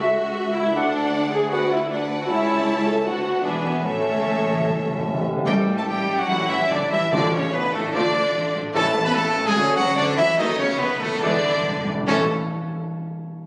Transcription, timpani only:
3.85 A2
3.93 A2
4.00 A2
4.08 A2
4.15 A2
4.21 A2
4.30 A2
4.38 A2
4.45 A2
4.53 A2
4.61 A2
4.68 A2
4.76 A2
4.83 A2
4.91 A2
4.99 A2
5.06 A2
5.14 A2
5.22 A2
5.30 A2
5.37 A2
5.46 A2
7.12 A2
8.76 A2
11.22 E2
11.30 E2
11.38 E2
11.46 E2
11.54 E2
11.63 E2
11.71 E2
11.79 E2
11.88 E2
11.96 E2
12.08 A2

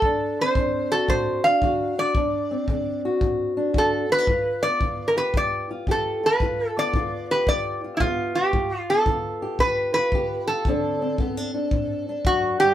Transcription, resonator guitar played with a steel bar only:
Already playing: A4
0.41 C5
0.92 A4
1.10 C5
1.44 F5
1.99 D5
3.78 A4
4.12 B4
4.63 D5
5.08 A#4
5.18 B4
5.37 D5
5.91 A4
6.26 B4
6.68 A4
6.79 D5
7.31 B4
7.49 D5
7.97 E4 F4
8.35 G4
8.79 F4
8.90 A4
9.60 B4
9.94 B4
10.47 A4
12.26 F#4
12.60 G4

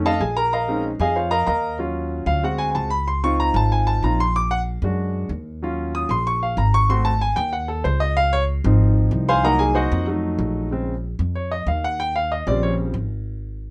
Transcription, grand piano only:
0.06 A4 D#5 F5 A5
0.21 G#4 G#5
0.37 A#4 A#5
0.53 A#4 D#5 F5 A#5
0.68 G#3 C4 C#4 D#4
1.00 G#4 D#5 F5 G#5
1.16 F4 C5 C#5 F5
1.31 A#4 D#5 F5 A#5
1.47 A#4 D#5 F5 A#5
1.79 F#3 C#4 F4
2.27 F5
2.43 G#3 C4 F#4 F#5
2.58 G#5
2.71 G#5
2.75 A5
2.90 B5
3.08 C6
3.24 C4 D#4 F4 C#6
3.40 A#5
3.56 A5
3.72 G#5
3.87 A5
4.04 C4 D#4 F4 A#5
4.20 C6
4.36 D6
4.51 F#5
4.84 G#3 D4 F#4
5.62 F#3 C#4 F4
5.95 D#6
6.11 C6
6.27 C#6
6.43 F5
6.58 A#5
6.74 C#6
6.89 A3 C4 F#4 C6
7.05 A5
7.21 G#5
7.36 G5
7.53 F#5
7.68 A4
7.84 C5
8.00 D#5
8.17 F5
8.33 C#5
8.65 F3 C4 D#4
9.29 C5 F5 G#5 C6
9.43 F#3 A#3 D#4 A#4 D#5 F#5 A#5
9.59 G#4 G#5
9.75 F#4 C5 D#5 F#5
10.07 F#3 A3 D#4
10.71 C#3 G#3 C4
11.35 C#5
11.51 D#5
11.68 F5
11.84 F#5
12.00 G5
12.16 F5
12.32 D#5
12.47 C#3 F3 G3 C4 D5
12.63 C#5

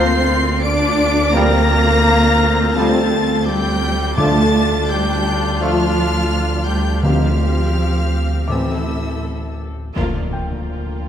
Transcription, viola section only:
Already playing: A#3 F4
1.35 C4
4.17 D4 F4
7.04 C4 G4
8.50 A4
9.96 F4

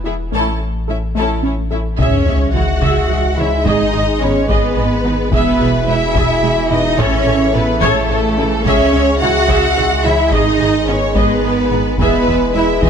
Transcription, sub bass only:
Already playing: E1
0.33 A1
1.99 C#2
3.66 G#1
5.33 E1
7.00 A1
8.66 C#2
10.33 G#1
12.00 E1

